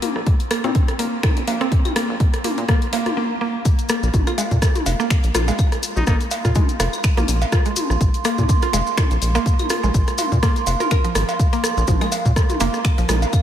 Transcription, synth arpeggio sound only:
0.02 0.08 A#3 medium
0.51 0.56 A#3 medium
0.64 0.71 C4 medium
0.99 1.05 A#3 medium
1.48 1.53 A#3 medium
1.61 1.68 C4 loud
1.96 2.02 A#3 medium
2.44 2.50 A#3 medium
2.69 2.74 A#3 medium
2.93 2.99 A#3 medium
3.17 3.23 A#3 medium
3.41 3.47 A#3 medium
3.90 3.95 A#3 medium
4.27 4.32 F4 medium
4.38 4.41 G#3 medium
5.00 5.04 A#3 loud
5.35 5.40 F4 medium
5.48 5.51 G#3 medium
6.07 6.13 A#3 loud
6.45 6.49 F4 medium
6.56 6.59 G#3 medium
7.17 7.22 A#3 loud
7.52 7.58 F4 medium
7.66 7.69 G#3 medium
8.25 8.31 A#3 loud
8.62 8.67 F4 medium
8.73 8.77 G#3 medium
9.35 9.40 A#3 loud
9.70 9.76 F4 medium
9.83 9.86 G#3 medium
10.43 10.48 A#3 loud
10.80 10.85 A#4 medium
10.91 10.97 A#4 medium
11.04 11.07 F3 medium
11.53 11.57 A#3 medium
11.88 11.96 F3 medium
12.01 12.04 G#3 medium
12.61 12.66 A#3 loud
12.98 13.05 F3 medium
13.09 13.12 G#3 medium

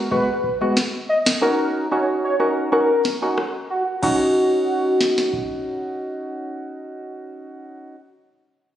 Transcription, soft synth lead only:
0.11 0.58 B4 loud
1.09 1.22 D#5 medium
1.42 1.67 A#4 loud
1.92 2.03 C#5 medium
2.24 2.36 C#5 medium
2.40 2.53 A#4 medium
2.72 3.19 A#4 loud
3.70 3.83 F#4 medium
4.03 5.94 F#4 medium

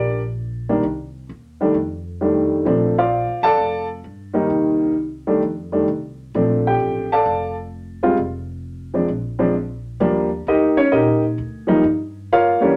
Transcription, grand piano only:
0.00 0.20 D4 medium
0.00 0.20 G4 medium
0.00 0.20 A#4 medium
0.00 0.20 D5 medium
0.69 0.82 D#3 medium
0.69 0.82 G3 medium
0.69 0.82 A#3 medium
0.69 0.82 D4 medium
1.61 1.74 D#3 medium
1.61 1.74 G3 medium
1.61 1.74 A3 medium
1.61 1.74 D4 medium
2.21 2.67 D#3 medium
2.21 2.67 G3 medium
2.21 2.65 A3 soft
2.21 2.65 D4 medium
2.65 2.94 F3 medium
2.65 2.94 A3 medium
2.65 2.94 C4 medium
2.65 2.95 D4 medium
2.98 3.41 F4 medium
2.98 3.41 C5 medium
2.98 3.41 D5 medium
2.98 3.41 F5 medium
3.43 3.86 A4 medium
3.43 3.87 D5 medium
3.43 3.86 F5 medium
3.43 3.86 A5 medium
4.34 4.92 D#3 medium
4.34 4.93 G3 medium
4.34 4.93 A#3 medium
4.34 4.93 D#4 medium
5.27 5.41 D#3 medium
5.27 5.41 G3 medium
5.27 5.41 A3 medium
5.27 5.41 D4 medium
5.72 5.86 D#3 medium
5.72 5.86 G3 soft
5.72 5.86 A3 soft
5.72 5.86 D4 medium
6.35 7.05 F3 medium
6.35 7.05 A3 medium
6.35 7.05 C4 medium
6.35 7.05 D4 medium
6.67 7.09 G4 medium
6.67 7.09 G5 medium
7.12 7.55 A4 medium
7.12 7.55 D5 medium
7.12 7.54 F5 medium
7.12 7.54 A5 medium
8.03 8.16 G3 medium
8.03 8.16 G#3 medium
8.03 8.16 C4 medium
8.03 8.16 F4 medium
8.94 9.07 F3 medium
8.94 9.08 G#3 medium
8.94 9.08 C4 soft
8.94 9.08 D4 medium
9.39 9.53 F3 medium
9.39 9.53 G#3 medium
9.39 9.53 C4 medium
9.39 9.53 D4 medium
10.00 10.28 F3 medium
10.00 10.28 G3 medium
10.00 10.28 A#3 medium
10.00 10.29 D4 medium
10.48 10.77 D#4 medium
10.48 10.78 G4 medium
10.48 10.77 A#4 medium
10.48 10.77 D#5 medium
10.77 10.92 C#4 medium
10.77 10.92 C#5 medium
10.92 11.22 D#4 medium
10.92 11.22 G4 medium
10.92 11.22 A#4 medium
10.92 11.22 D#5 medium
11.67 11.81 F3 medium
11.67 11.82 G3 medium
11.67 11.82 A#3 medium
11.67 11.82 D#4 medium
12.32 12.61 F4 medium
12.32 12.61 A#4 medium
12.32 12.60 C#5 medium
12.32 12.61 F5 medium
12.60 12.74 E3 medium
12.60 12.74 G3 medium
12.60 12.74 A#3 medium
12.60 12.76 C#4 soft
12.60 12.74 D4 medium
12.60 12.76 G4 medium
12.60 12.76 A#4 soft
12.60 12.76 C#5 medium

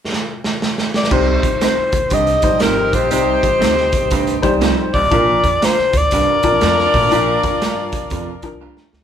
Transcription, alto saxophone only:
0.96 1.14 D5 medium
1.13 1.62 C5 medium
1.63 2.15 C5 medium
2.14 2.64 D#5 loud
2.62 2.96 A#4 medium
2.94 3.12 C5 medium
3.13 4.58 C5 medium
4.94 5.66 D5 loud
5.65 5.99 C5 loud
5.97 8.62 D5 loud

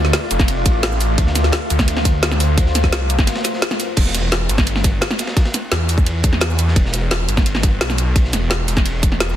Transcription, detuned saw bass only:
0.00 0.12 D2 loud
0.31 0.64 F1 loud
0.66 1.17 A1 loud
1.18 1.52 D2 medium
1.70 2.56 D2 loud
2.58 2.91 D2 loud
2.93 3.26 C2 loud
3.97 4.48 E1 loud
4.49 5.00 G1 loud
5.71 6.75 E2 loud
6.76 7.27 E1 loud
7.29 7.79 G1 loud
7.81 8.32 B1 medium
8.33 8.67 E1 medium
8.68 8.84 E1 loud
8.86 9.37 E1 loud

